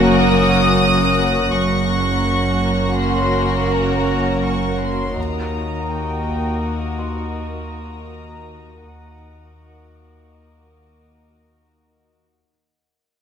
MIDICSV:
0, 0, Header, 1, 11, 480
1, 0, Start_track
1, 0, Tempo, 731707
1, 991, Time_signature, 5, 2, 24, 8
1, 8669, End_track
2, 0, Start_track
2, 0, Title_t, "Violin section"
2, 0, Program_c, 0, 48
2, 0, Note_on_c, 0, 90, 48
2, 0, Note_on_c, 0, 94, 45
2, 3128, Note_off_c, 0, 90, 0
2, 3128, Note_off_c, 0, 94, 0
2, 3388, Note_on_c, 0, 87, 32
2, 3389, Note_on_c, 0, 82, 35
2, 6432, Note_off_c, 0, 87, 0
2, 6432, Note_on_c, 0, 86, 32
2, 7443, Note_off_c, 0, 86, 0
2, 7924, Note_off_c, 0, 82, 0
2, 8669, End_track
3, 0, Start_track
3, 0, Title_t, "Felt piano"
3, 0, Program_c, 1, 0
3, 0, Control_c, 1, 64, 127
3, 3404, Control_c, 1, 64, 0
3, 3520, Control_c, 1, 64, 127
3, 4585, Note_on_c, 1, 84, 30
3, 6001, Note_off_c, 1, 84, 0
3, 8203, Control_c, 1, 64, 0
3, 8669, End_track
4, 0, Start_track
4, 0, Title_t, "Violin section"
4, 0, Program_c, 2, 48
4, 33, Note_on_c, 2, 87, 92
4, 992, Note_off_c, 2, 87, 0
4, 1002, Note_on_c, 2, 85, 69
4, 1956, Note_off_c, 2, 85, 0
4, 1959, Note_on_c, 2, 84, 65
4, 2425, Note_off_c, 2, 84, 0
4, 2439, Note_on_c, 2, 82, 66
4, 2915, Note_off_c, 2, 82, 0
4, 2921, Note_on_c, 2, 85, 58
4, 3156, Note_off_c, 2, 85, 0
4, 3164, Note_on_c, 2, 84, 57
4, 3393, Note_off_c, 2, 84, 0
4, 3403, Note_on_c, 2, 82, 51
4, 3876, Note_on_c, 2, 79, 47
4, 3877, Note_off_c, 2, 82, 0
4, 4353, Note_off_c, 2, 79, 0
4, 4357, Note_on_c, 2, 78, 38
4, 4834, Note_off_c, 2, 78, 0
4, 4843, Note_on_c, 2, 82, 42
4, 5797, Note_off_c, 2, 82, 0
4, 5797, Note_on_c, 2, 78, 35
4, 6734, Note_off_c, 2, 78, 0
4, 6754, Note_on_c, 2, 75, 24
4, 7952, Note_off_c, 2, 75, 0
4, 8669, End_track
5, 0, Start_track
5, 0, Title_t, "Glass harmonica"
5, 0, Program_c, 3, 92
5, 0, Note_on_c, 3, 70, 46
5, 0, Note_on_c, 3, 73, 44
5, 0, Note_on_c, 3, 78, 44
5, 963, Note_off_c, 3, 70, 0
5, 981, Note_off_c, 3, 73, 0
5, 984, Note_off_c, 3, 78, 0
5, 989, Note_on_c, 3, 73, 42
5, 992, Note_on_c, 3, 70, 44
5, 992, Note_on_c, 3, 78, 42
5, 3364, Note_off_c, 3, 73, 0
5, 3365, Note_off_c, 3, 70, 0
5, 3365, Note_off_c, 3, 78, 0
5, 3393, Note_on_c, 3, 75, 31
5, 3393, Note_on_c, 3, 82, 33
5, 3396, Note_on_c, 3, 70, 33
5, 5765, Note_off_c, 3, 82, 0
5, 5767, Note_off_c, 3, 70, 0
5, 5783, Note_off_c, 3, 75, 0
5, 5787, Note_on_c, 3, 70, 17
5, 5788, Note_on_c, 3, 78, 17
5, 5791, Note_on_c, 3, 75, 17
5, 8162, Note_off_c, 3, 70, 0
5, 8163, Note_off_c, 3, 78, 0
5, 8165, Note_off_c, 3, 75, 0
5, 8669, End_track
6, 0, Start_track
6, 0, Title_t, "Violin section"
6, 0, Program_c, 4, 48
6, 0, Note_on_c, 4, 66, 66
6, 0, Note_on_c, 4, 70, 63
6, 964, Note_off_c, 4, 66, 0
6, 964, Note_off_c, 4, 70, 0
6, 986, Note_on_c, 4, 70, 56
6, 990, Note_on_c, 4, 66, 57
6, 3362, Note_off_c, 4, 70, 0
6, 3364, Note_off_c, 4, 66, 0
6, 3389, Note_on_c, 4, 70, 42
6, 3392, Note_on_c, 4, 66, 43
6, 5764, Note_off_c, 4, 70, 0
6, 5765, Note_off_c, 4, 66, 0
6, 5787, Note_on_c, 4, 66, 24
6, 5787, Note_on_c, 4, 70, 25
6, 8031, Note_off_c, 4, 66, 0
6, 8031, Note_off_c, 4, 70, 0
6, 8669, End_track
7, 0, Start_track
7, 0, Title_t, "Viola section"
7, 0, Program_c, 5, 48
7, 0, Note_on_c, 5, 58, 66
7, 0, Note_on_c, 5, 61, 65
7, 965, Note_off_c, 5, 58, 0
7, 966, Note_off_c, 5, 61, 0
7, 988, Note_on_c, 5, 58, 50
7, 989, Note_on_c, 5, 61, 55
7, 3363, Note_off_c, 5, 58, 0
7, 3364, Note_off_c, 5, 61, 0
7, 3394, Note_on_c, 5, 63, 45
7, 3396, Note_on_c, 5, 58, 42
7, 5766, Note_off_c, 5, 63, 0
7, 5767, Note_off_c, 5, 58, 0
7, 5797, Note_on_c, 5, 58, 25
7, 5799, Note_on_c, 5, 63, 24
7, 8036, Note_off_c, 5, 58, 0
7, 8037, Note_off_c, 5, 63, 0
7, 8669, End_track
8, 0, Start_track
8, 0, Title_t, "Cello section"
8, 0, Program_c, 6, 48
8, 0, Note_on_c, 6, 42, 62
8, 965, Note_off_c, 6, 42, 0
8, 993, Note_on_c, 6, 42, 54
8, 3365, Note_off_c, 6, 42, 0
8, 3395, Note_on_c, 6, 39, 45
8, 5766, Note_off_c, 6, 39, 0
8, 5789, Note_on_c, 6, 39, 28
8, 8032, Note_off_c, 6, 39, 0
8, 8669, End_track
9, 0, Start_track
9, 0, Title_t, "Double bass section"
9, 0, Program_c, 7, 48
9, 0, Note_on_c, 7, 30, 68
9, 966, Note_off_c, 7, 30, 0
9, 992, Note_on_c, 7, 30, 60
9, 3365, Note_off_c, 7, 30, 0
9, 3402, Note_on_c, 7, 39, 45
9, 5770, Note_off_c, 7, 39, 0
9, 5796, Note_on_c, 7, 39, 27
9, 8036, Note_off_c, 7, 39, 0
9, 8669, End_track
10, 0, Start_track
10, 0, Title_t, "Sub bass"
10, 0, Program_c, 8, 38
10, 0, Note_on_c, 8, 30, 67
10, 991, Note_off_c, 8, 30, 0
10, 996, Note_on_c, 8, 30, 60
10, 3393, Note_on_c, 8, 39, 61
10, 3402, Note_off_c, 8, 30, 0
10, 5792, Note_off_c, 8, 39, 0
10, 5796, Note_on_c, 8, 39, 53
10, 8167, Note_off_c, 8, 39, 0
10, 8669, End_track
11, 0, Start_track
11, 0, Title_t, "Taiko and cinematic ensemble drums"
11, 3397, Note_on_c, 9, 41, 46
11, 3463, Note_off_c, 9, 41, 0
11, 4117, Note_on_c, 9, 41, 26
11, 4183, Note_off_c, 9, 41, 0
11, 8669, End_track
0, 0, End_of_file